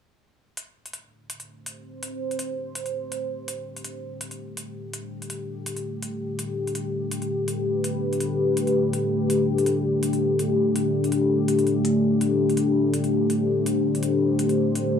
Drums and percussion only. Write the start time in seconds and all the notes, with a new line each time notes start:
0.57 closed hi-hat
0.86 closed hi-hat
0.93 closed hi-hat
1.30 closed hi-hat
1.40 closed hi-hat
1.66 closed hi-hat
2.03 closed hi-hat
2.31 closed hi-hat
2.39 closed hi-hat
2.75 closed hi-hat
2.86 closed hi-hat
3.12 closed hi-hat
3.48 closed hi-hat
3.77 closed hi-hat
3.84 closed hi-hat
4.21 closed hi-hat
4.31 closed hi-hat
4.57 closed hi-hat
4.93 closed hi-hat
5.22 closed hi-hat
5.30 closed hi-hat
5.66 closed hi-hat
5.77 closed hi-hat
6.03 closed hi-hat
6.39 closed hi-hat
6.67 closed hi-hat
6.75 closed hi-hat
7.11 closed hi-hat
7.22 closed hi-hat
7.48 closed hi-hat
7.84 closed hi-hat
8.13 closed hi-hat
8.20 closed hi-hat
8.57 closed hi-hat
8.67 closed hi-hat
8.93 closed hi-hat
9.30 closed hi-hat
9.58 closed hi-hat
9.66 closed hi-hat
10.03 closed hi-hat
10.13 closed hi-hat
10.39 closed hi-hat
10.76 closed hi-hat
11.04 closed hi-hat
11.12 closed hi-hat
11.48 closed hi-hat
11.59 closed hi-hat
11.67 closed hi-hat
11.85 closed hi-hat
12.21 closed hi-hat
12.50 closed hi-hat
12.57 closed hi-hat
12.94 closed hi-hat
13.04 closed hi-hat
13.30 closed hi-hat
13.66 closed hi-hat
13.95 closed hi-hat
14.03 closed hi-hat
14.39 closed hi-hat
14.49 closed hi-hat
14.75 closed hi-hat